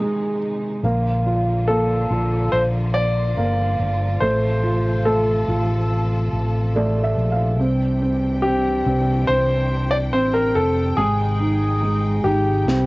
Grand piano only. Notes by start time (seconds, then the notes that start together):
Already playing: G#4
1.68 A4
2.52 C5
2.94 D5
4.20 C5
5.05 A4
8.42 G4
9.27 C5
9.91 D5
10.13 C5
10.34 A#4
10.55 A4
10.97 G#4
12.24 G4